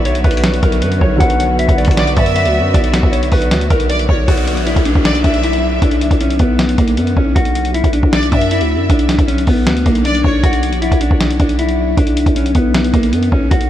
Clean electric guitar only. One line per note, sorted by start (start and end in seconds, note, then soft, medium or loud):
0.06 0.21 C#5 medium
0.24 0.60 B4 medium
0.63 0.78 A#4 medium
0.82 0.98 B4 medium
1.01 1.17 C#5 medium
1.20 1.56 F#5 loud
1.59 1.75 E5 medium
1.78 2.14 D5 loud
2.17 2.32 D5 loud
2.36 2.72 E5 medium
2.74 3.10 D5 medium
3.12 3.28 C#5 medium
3.33 3.69 B4 medium
3.70 3.86 A#4 loud
3.90 4.26 D5 medium
4.28 4.64 F#4 loud
4.66 4.82 E4 medium
4.86 5.22 D4 medium
5.24 5.40 D4 medium
5.44 5.80 E4 medium
5.82 6.18 D4 loud
6.21 6.36 C#4 medium
6.40 6.76 B3 medium
6.78 6.94 A#3 medium
6.97 7.13 B3 medium
7.17 7.33 C#4 medium
7.35 7.72 F#4 loud
7.74 7.90 E4 medium
7.93 8.29 D4 medium
8.32 8.48 D4 medium
8.51 8.87 E4 medium
8.90 9.26 D4 medium
9.28 9.44 C#4 medium
9.48 9.84 B3 medium
9.86 10.02 A#3 medium
10.05 10.41 D4 medium
10.43 10.80 F#4 loud
10.82 10.98 E4 medium
11.01 11.37 D4 medium
11.40 11.55 D4 medium
11.59 11.95 E4 medium
11.97 12.33 D4 loud
12.36 12.52 C#4 medium
12.55 12.91 B3 medium
12.93 13.09 A#3 medium
13.13 13.28 B3 medium
13.32 13.48 C#4 medium
13.51 13.70 F#4 medium